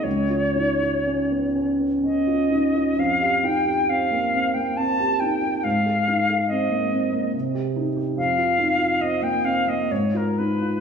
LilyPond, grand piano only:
\new Staff \with { instrumentName = "Grand piano" } { \time 3/4 \key f \minor \tempo 4 = 68 des,16 f'16 ees'16 f'16 des'16 ces'16 des'16 ces'16 des'16 f'16 ees'16 f'16 | f,16 g'16 ees'16 g'16 c'16 bes16 c'16 bes16 c'16 g'16 ees'16 g'16 | aes,16 aes'16 ees'16 aes'16 c'16 bes16 c'16 bes16 c16 g'16 ees'16 g'16 | f,16 f'16 ees'16 f'16 c'16 bes16 c'16 bes16 aes,16 f'16 ees'16 f'16 | }